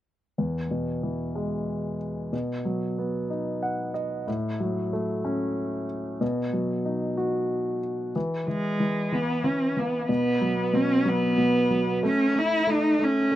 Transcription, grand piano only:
0, 0, Header, 1, 2, 480
1, 0, Start_track
1, 0, Tempo, 646552
1, 289, Time_signature, 6, 3, 24, 8
1, 9915, End_track
2, 0, Start_track
2, 0, Title_t, "Grand piano"
2, 0, Program_c, 0, 0
2, 284, Note_on_c, 0, 40, 36
2, 417, Control_c, 0, 64, 127
2, 527, Note_on_c, 0, 47, 29
2, 766, Note_on_c, 0, 52, 34
2, 1006, Note_on_c, 0, 56, 36
2, 1460, Note_off_c, 0, 47, 0
2, 1698, Note_off_c, 0, 40, 0
2, 1700, Note_off_c, 0, 52, 0
2, 1707, Note_off_c, 0, 56, 0
2, 1728, Note_on_c, 0, 47, 41
2, 1739, Control_c, 0, 64, 0
2, 1859, Control_c, 0, 64, 127
2, 1969, Note_on_c, 0, 54, 30
2, 2216, Note_on_c, 0, 59, 35
2, 2453, Note_on_c, 0, 63, 38
2, 2692, Note_on_c, 0, 78, 40
2, 2902, Note_off_c, 0, 54, 0
2, 2915, Note_off_c, 0, 78, 0
2, 2927, Note_on_c, 0, 75, 39
2, 3140, Note_off_c, 0, 47, 0
2, 3145, Note_off_c, 0, 59, 0
2, 3151, Note_off_c, 0, 63, 0
2, 3152, Note_off_c, 0, 75, 0
2, 3173, Note_on_c, 0, 45, 46
2, 3182, Control_c, 0, 64, 0
2, 3317, Control_c, 0, 64, 127
2, 3417, Note_on_c, 0, 54, 33
2, 3660, Note_on_c, 0, 57, 38
2, 3894, Note_on_c, 0, 61, 44
2, 4346, Note_off_c, 0, 54, 0
2, 4583, Note_off_c, 0, 45, 0
2, 4588, Note_off_c, 0, 57, 0
2, 4592, Note_off_c, 0, 61, 0
2, 4609, Note_on_c, 0, 47, 46
2, 4622, Control_c, 0, 64, 0
2, 4753, Control_c, 0, 64, 127
2, 4850, Note_on_c, 0, 54, 31
2, 5088, Note_on_c, 0, 63, 37
2, 5326, Note_on_c, 0, 66, 41
2, 5782, Note_off_c, 0, 54, 0
2, 6021, Note_off_c, 0, 47, 0
2, 6021, Note_off_c, 0, 63, 0
2, 6027, Note_off_c, 0, 66, 0
2, 6056, Note_on_c, 0, 52, 47
2, 6062, Control_c, 0, 64, 0
2, 6179, Control_c, 0, 64, 127
2, 6284, Note_off_c, 0, 52, 0
2, 6295, Note_on_c, 0, 52, 36
2, 6522, Note_off_c, 0, 52, 0
2, 6533, Note_on_c, 0, 52, 42
2, 6762, Note_off_c, 0, 52, 0
2, 6773, Note_on_c, 0, 52, 39
2, 6997, Note_off_c, 0, 52, 0
2, 7008, Note_on_c, 0, 52, 36
2, 7240, Note_off_c, 0, 52, 0
2, 7251, Note_on_c, 0, 52, 36
2, 7484, Note_off_c, 0, 52, 0
2, 7490, Note_on_c, 0, 47, 47
2, 7501, Control_c, 0, 64, 0
2, 7647, Control_c, 0, 64, 127
2, 7731, Note_on_c, 0, 54, 38
2, 7957, Note_off_c, 0, 47, 0
2, 7968, Note_on_c, 0, 47, 44
2, 8194, Note_off_c, 0, 54, 0
2, 8205, Note_on_c, 0, 54, 41
2, 8435, Note_off_c, 0, 47, 0
2, 8446, Note_on_c, 0, 47, 41
2, 8679, Note_off_c, 0, 54, 0
2, 8690, Note_on_c, 0, 54, 37
2, 8913, Note_off_c, 0, 47, 0
2, 8922, Note_off_c, 0, 54, 0
2, 8931, Note_on_c, 0, 57, 49
2, 8939, Control_c, 0, 64, 0
2, 9088, Control_c, 0, 64, 127
2, 9162, Note_off_c, 0, 57, 0
2, 9173, Note_on_c, 0, 57, 37
2, 9395, Note_off_c, 0, 57, 0
2, 9406, Note_on_c, 0, 57, 45
2, 9635, Note_off_c, 0, 57, 0
2, 9646, Note_on_c, 0, 57, 41
2, 9876, Note_off_c, 0, 57, 0
2, 9887, Note_on_c, 0, 57, 40
2, 9915, Note_off_c, 0, 57, 0
2, 9915, End_track
0, 0, End_of_file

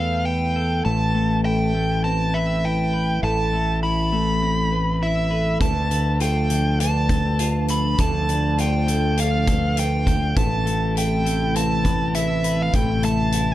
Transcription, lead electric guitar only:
0, 0, Header, 1, 2, 480
1, 0, Start_track
1, 0, Key_signature, 0, "minor"
1, 0, Tempo, 594648
1, 689, Time_signature, 4, 2, 24, 8
1, 10932, End_track
2, 0, Start_track
2, 0, Title_t, "Lead electric guitar"
2, 0, Program_c, 0, 29
2, 0, Note_on_c, 0, 77, 68
2, 204, Note_on_c, 0, 79, 65
2, 226, Note_off_c, 0, 77, 0
2, 681, Note_off_c, 0, 79, 0
2, 685, Note_on_c, 0, 81, 67
2, 1135, Note_off_c, 0, 81, 0
2, 1172, Note_on_c, 0, 79, 73
2, 1644, Note_off_c, 0, 79, 0
2, 1647, Note_on_c, 0, 81, 74
2, 1889, Note_on_c, 0, 76, 58
2, 1896, Note_off_c, 0, 81, 0
2, 2137, Note_off_c, 0, 76, 0
2, 2139, Note_on_c, 0, 79, 65
2, 2582, Note_off_c, 0, 79, 0
2, 2615, Note_on_c, 0, 81, 73
2, 3060, Note_off_c, 0, 81, 0
2, 3091, Note_on_c, 0, 83, 77
2, 4057, Note_on_c, 0, 76, 55
2, 4079, Note_off_c, 0, 83, 0
2, 4501, Note_off_c, 0, 76, 0
2, 4529, Note_on_c, 0, 81, 63
2, 5015, Note_off_c, 0, 81, 0
2, 5019, Note_on_c, 0, 79, 68
2, 5489, Note_off_c, 0, 79, 0
2, 5492, Note_on_c, 0, 81, 72
2, 6219, Note_on_c, 0, 83, 62
2, 6231, Note_off_c, 0, 81, 0
2, 6457, Note_on_c, 0, 81, 72
2, 6460, Note_off_c, 0, 83, 0
2, 6944, Note_off_c, 0, 81, 0
2, 6947, Note_on_c, 0, 79, 64
2, 7425, Note_on_c, 0, 77, 61
2, 7431, Note_off_c, 0, 79, 0
2, 7905, Note_on_c, 0, 79, 62
2, 7910, Note_off_c, 0, 77, 0
2, 8369, Note_off_c, 0, 79, 0
2, 8372, Note_on_c, 0, 81, 63
2, 8860, Note_off_c, 0, 81, 0
2, 8863, Note_on_c, 0, 79, 68
2, 9333, Note_off_c, 0, 79, 0
2, 9336, Note_on_c, 0, 81, 72
2, 9807, Note_on_c, 0, 76, 65
2, 9825, Note_off_c, 0, 81, 0
2, 10177, Note_off_c, 0, 76, 0
2, 10189, Note_on_c, 0, 77, 60
2, 10294, Note_off_c, 0, 77, 0
2, 10294, Note_on_c, 0, 79, 61
2, 10529, Note_off_c, 0, 79, 0
2, 10532, Note_on_c, 0, 81, 64
2, 10932, Note_off_c, 0, 81, 0
2, 10932, End_track
0, 0, End_of_file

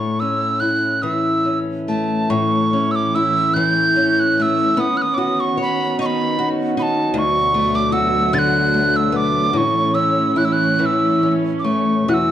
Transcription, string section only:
0, 0, Header, 1, 2, 480
1, 0, Start_track
1, 0, Key_signature, 3, "major"
1, 0, Tempo, 828729
1, 1320, Time_signature, 6, 3, 24, 8
1, 2763, Tempo, 802139
1, 3723, Tempo, 773196
1, 4683, Tempo, 811908
1, 5643, Tempo, 848656
1, 7210, End_track
2, 0, Start_track
2, 0, Title_t, "String section"
2, 0, Program_c, 0, 48
2, 1332, Note_on_c, 0, 45, 53
2, 1333, Note_on_c, 0, 61, 60
2, 1335, Note_on_c, 0, 52, 56
2, 2754, Note_off_c, 0, 45, 0
2, 2756, Note_off_c, 0, 52, 0
2, 2771, Note_on_c, 0, 59, 62
2, 2772, Note_on_c, 0, 51, 67
2, 4183, Note_off_c, 0, 61, 0
2, 4190, Note_off_c, 0, 59, 0
2, 4191, Note_off_c, 0, 51, 0
2, 4205, Note_on_c, 0, 47, 68
2, 4206, Note_on_c, 0, 54, 81
2, 4211, Note_on_c, 0, 38, 76
2, 5630, Note_off_c, 0, 47, 0
2, 5630, Note_off_c, 0, 54, 0
2, 5633, Note_off_c, 0, 38, 0
2, 5636, Note_on_c, 0, 52, 60
2, 5637, Note_on_c, 0, 61, 75
2, 5638, Note_on_c, 0, 45, 66
2, 7064, Note_off_c, 0, 52, 0
2, 7064, Note_off_c, 0, 61, 0
2, 7065, Note_off_c, 0, 45, 0
2, 7079, Note_on_c, 0, 47, 52
2, 7081, Note_on_c, 0, 40, 59
2, 7086, Note_on_c, 0, 54, 66
2, 7210, Note_off_c, 0, 40, 0
2, 7210, Note_off_c, 0, 47, 0
2, 7210, Note_off_c, 0, 54, 0
2, 7210, End_track
0, 0, End_of_file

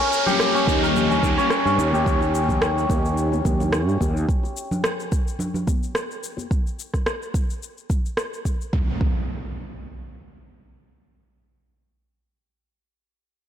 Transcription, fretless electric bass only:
0, 0, Header, 1, 2, 480
1, 0, Start_track
1, 0, Tempo, 555556
1, 1779, Time_signature, 4, 2, 24, 8
1, 11651, End_track
2, 0, Start_track
2, 0, Title_t, "Fretless electric bass"
2, 0, Program_c, 0, 35
2, 581, Note_on_c, 0, 39, 93
2, 1033, Note_off_c, 0, 39, 0
2, 1060, Note_on_c, 0, 39, 85
2, 1171, Note_off_c, 0, 39, 0
2, 1429, Note_on_c, 0, 43, 85
2, 1521, Note_off_c, 0, 43, 0
2, 1536, Note_on_c, 0, 39, 78
2, 2470, Note_off_c, 0, 39, 0
2, 2502, Note_on_c, 0, 39, 86
2, 2953, Note_off_c, 0, 39, 0
2, 2981, Note_on_c, 0, 39, 66
2, 3346, Note_off_c, 0, 39, 0
2, 3346, Note_on_c, 0, 43, 87
2, 3440, Note_off_c, 0, 43, 0
2, 3462, Note_on_c, 0, 39, 90
2, 3667, Note_off_c, 0, 39, 0
2, 11651, End_track
0, 0, End_of_file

